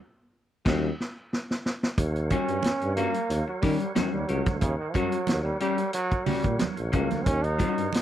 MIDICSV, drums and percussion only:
0, 0, Header, 1, 2, 480
1, 0, Start_track
1, 0, Tempo, 661667
1, 1433, Time_signature, 4, 2, 24, 8
1, 5817, End_track
2, 0, Start_track
2, 0, Title_t, "Drums"
2, 478, Note_on_c, 9, 36, 98
2, 479, Note_on_c, 9, 49, 80
2, 486, Note_on_c, 9, 38, 101
2, 550, Note_off_c, 9, 36, 0
2, 552, Note_off_c, 9, 49, 0
2, 558, Note_off_c, 9, 38, 0
2, 727, Note_on_c, 9, 38, 71
2, 800, Note_off_c, 9, 38, 0
2, 965, Note_on_c, 9, 38, 81
2, 1037, Note_off_c, 9, 38, 0
2, 1092, Note_on_c, 9, 38, 74
2, 1165, Note_off_c, 9, 38, 0
2, 1202, Note_on_c, 9, 38, 85
2, 1274, Note_off_c, 9, 38, 0
2, 1328, Note_on_c, 9, 38, 98
2, 1401, Note_off_c, 9, 38, 0
2, 1434, Note_on_c, 9, 42, 97
2, 1435, Note_on_c, 9, 36, 114
2, 1435, Note_on_c, 9, 62, 52
2, 1507, Note_off_c, 9, 36, 0
2, 1507, Note_off_c, 9, 42, 0
2, 1507, Note_off_c, 9, 62, 0
2, 1564, Note_on_c, 9, 42, 35
2, 1637, Note_off_c, 9, 42, 0
2, 1672, Note_on_c, 9, 42, 76
2, 1672, Note_on_c, 9, 62, 37
2, 1675, Note_on_c, 9, 36, 91
2, 1744, Note_off_c, 9, 42, 0
2, 1745, Note_off_c, 9, 62, 0
2, 1747, Note_off_c, 9, 36, 0
2, 1801, Note_on_c, 9, 42, 50
2, 1873, Note_off_c, 9, 42, 0
2, 1905, Note_on_c, 9, 63, 68
2, 1916, Note_on_c, 9, 42, 94
2, 1925, Note_on_c, 9, 38, 113
2, 1978, Note_off_c, 9, 63, 0
2, 1988, Note_off_c, 9, 42, 0
2, 1997, Note_off_c, 9, 38, 0
2, 2041, Note_on_c, 9, 42, 36
2, 2114, Note_off_c, 9, 42, 0
2, 2152, Note_on_c, 9, 42, 74
2, 2224, Note_off_c, 9, 42, 0
2, 2279, Note_on_c, 9, 42, 56
2, 2352, Note_off_c, 9, 42, 0
2, 2394, Note_on_c, 9, 42, 85
2, 2467, Note_off_c, 9, 42, 0
2, 2631, Note_on_c, 9, 62, 55
2, 2633, Note_on_c, 9, 36, 87
2, 2637, Note_on_c, 9, 46, 80
2, 2703, Note_off_c, 9, 62, 0
2, 2706, Note_off_c, 9, 36, 0
2, 2710, Note_off_c, 9, 46, 0
2, 2757, Note_on_c, 9, 42, 49
2, 2830, Note_off_c, 9, 42, 0
2, 2871, Note_on_c, 9, 38, 110
2, 2872, Note_on_c, 9, 42, 75
2, 2876, Note_on_c, 9, 63, 94
2, 2944, Note_off_c, 9, 38, 0
2, 2945, Note_off_c, 9, 42, 0
2, 2948, Note_off_c, 9, 63, 0
2, 3109, Note_on_c, 9, 42, 62
2, 3181, Note_off_c, 9, 42, 0
2, 3236, Note_on_c, 9, 42, 47
2, 3237, Note_on_c, 9, 38, 33
2, 3237, Note_on_c, 9, 63, 74
2, 3239, Note_on_c, 9, 36, 102
2, 3308, Note_off_c, 9, 42, 0
2, 3309, Note_off_c, 9, 38, 0
2, 3310, Note_off_c, 9, 63, 0
2, 3312, Note_off_c, 9, 36, 0
2, 3347, Note_on_c, 9, 62, 50
2, 3351, Note_on_c, 9, 36, 115
2, 3351, Note_on_c, 9, 42, 101
2, 3420, Note_off_c, 9, 62, 0
2, 3423, Note_off_c, 9, 36, 0
2, 3423, Note_off_c, 9, 42, 0
2, 3585, Note_on_c, 9, 62, 39
2, 3591, Note_on_c, 9, 36, 90
2, 3592, Note_on_c, 9, 42, 70
2, 3657, Note_off_c, 9, 62, 0
2, 3663, Note_off_c, 9, 36, 0
2, 3664, Note_off_c, 9, 42, 0
2, 3713, Note_on_c, 9, 42, 51
2, 3786, Note_off_c, 9, 42, 0
2, 3823, Note_on_c, 9, 63, 75
2, 3828, Note_on_c, 9, 42, 85
2, 3837, Note_on_c, 9, 38, 118
2, 3895, Note_off_c, 9, 63, 0
2, 3900, Note_off_c, 9, 42, 0
2, 3909, Note_off_c, 9, 38, 0
2, 4065, Note_on_c, 9, 42, 80
2, 4138, Note_off_c, 9, 42, 0
2, 4192, Note_on_c, 9, 42, 56
2, 4264, Note_off_c, 9, 42, 0
2, 4302, Note_on_c, 9, 42, 93
2, 4374, Note_off_c, 9, 42, 0
2, 4433, Note_on_c, 9, 42, 28
2, 4437, Note_on_c, 9, 36, 80
2, 4505, Note_off_c, 9, 42, 0
2, 4510, Note_off_c, 9, 36, 0
2, 4545, Note_on_c, 9, 62, 54
2, 4545, Note_on_c, 9, 64, 75
2, 4547, Note_on_c, 9, 46, 91
2, 4617, Note_off_c, 9, 62, 0
2, 4617, Note_off_c, 9, 64, 0
2, 4619, Note_off_c, 9, 46, 0
2, 4668, Note_on_c, 9, 42, 53
2, 4674, Note_on_c, 9, 36, 82
2, 4740, Note_off_c, 9, 42, 0
2, 4747, Note_off_c, 9, 36, 0
2, 4781, Note_on_c, 9, 38, 102
2, 4782, Note_on_c, 9, 42, 83
2, 4800, Note_on_c, 9, 63, 97
2, 4854, Note_off_c, 9, 38, 0
2, 4855, Note_off_c, 9, 42, 0
2, 4872, Note_off_c, 9, 63, 0
2, 4911, Note_on_c, 9, 42, 39
2, 4984, Note_off_c, 9, 42, 0
2, 5024, Note_on_c, 9, 42, 61
2, 5031, Note_on_c, 9, 36, 96
2, 5096, Note_off_c, 9, 42, 0
2, 5104, Note_off_c, 9, 36, 0
2, 5154, Note_on_c, 9, 42, 45
2, 5155, Note_on_c, 9, 38, 35
2, 5161, Note_on_c, 9, 63, 77
2, 5226, Note_off_c, 9, 42, 0
2, 5227, Note_off_c, 9, 38, 0
2, 5234, Note_off_c, 9, 63, 0
2, 5266, Note_on_c, 9, 42, 97
2, 5269, Note_on_c, 9, 36, 104
2, 5272, Note_on_c, 9, 62, 51
2, 5339, Note_off_c, 9, 42, 0
2, 5341, Note_off_c, 9, 36, 0
2, 5344, Note_off_c, 9, 62, 0
2, 5395, Note_on_c, 9, 42, 36
2, 5468, Note_off_c, 9, 42, 0
2, 5507, Note_on_c, 9, 62, 38
2, 5511, Note_on_c, 9, 42, 63
2, 5512, Note_on_c, 9, 36, 86
2, 5580, Note_off_c, 9, 62, 0
2, 5584, Note_off_c, 9, 36, 0
2, 5584, Note_off_c, 9, 42, 0
2, 5642, Note_on_c, 9, 42, 50
2, 5715, Note_off_c, 9, 42, 0
2, 5749, Note_on_c, 9, 63, 69
2, 5761, Note_on_c, 9, 42, 88
2, 5770, Note_on_c, 9, 38, 127
2, 5817, Note_off_c, 9, 38, 0
2, 5817, Note_off_c, 9, 42, 0
2, 5817, Note_off_c, 9, 63, 0
2, 5817, End_track
0, 0, End_of_file